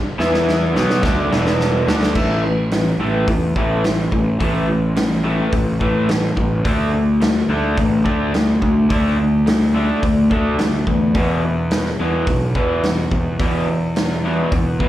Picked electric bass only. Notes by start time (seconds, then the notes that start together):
0.19 E2
0.75 B1
1.03 D2
1.31 E1
1.87 D2
2.15 A1
2.98 A1
3.28 E2
3.56 A1
4.12 A1
4.41 A1
5.53 A1
5.81 A1
6.37 A1
6.65 D2
7.49 D2
7.78 A1
8.06 D2
8.62 D2
8.90 D2
10.03 D2
10.31 D2
10.59 D2
10.87 E2
11.15 E2
12.00 E2
12.27 B1
12.55 E2
13.11 E2
13.40 E2
14.52 E2
14.80 E2